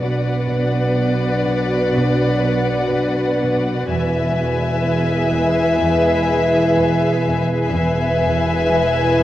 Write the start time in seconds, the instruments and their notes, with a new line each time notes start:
0.00 double bass section B1, cello section B2, french horn section F#3 D4, ambient pad F#4 B4 D5, viola section B4, violin section D5 F#5
0.50 cello section B2
0.98 cello section B3
1.46 cello section B2
1.95 cello section B2
2.43 cello section B3
2.92 cello section B2
3.40 cello section B2
3.87 double bass section E1, cello section E2, french horn section G#3 E4, ambient pad G#4 B4 E5, viola section B4, violin section E5 G#5 B6
4.36 cello section E2
4.85 cello section E3, violin section C7
5.33 cello section E2
5.81 cello section E2
6.30 cello section E3
6.78 cello section E2
7.27 cello section E2
7.75 double bass section E1, cello section E2, french horn section G#3 E4, ambient pad G#4 B4 E5, viola section B4, violin section E5 G#5
8.24 cello section E2
8.72 cello section E3